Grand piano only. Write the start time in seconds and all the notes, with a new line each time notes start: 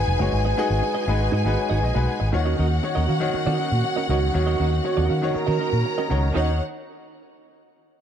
Already playing: G#3 D#4 F#4 B4
0.20 G#3 D#4 F#4 C#5
0.57 G#3 D#4 F#4 G#4
1.08 G#3 D#4 F#4 B4
1.45 G#3 D#4 F#4 B4
1.58 C#5
1.84 D#5
1.95 G#3 D#4 F#4 B4
2.08 F#5
2.32 D#3 D#4 F4 C#5
2.40 F#4
2.83 D#3 D#4 F#4 C#5
3.20 D#3 D#4 F#4 C#5
4.09 D#3 D#4 F#4 C#5
4.34 D#3 D#4 F#4 C#5
4.84 D#3 D#4 F#4 C#5
5.22 D#3 D#4 F#4 C#5
6.10 D#3 D#4 F#4 C#5
6.35 D#3 D#4 F#4 C#5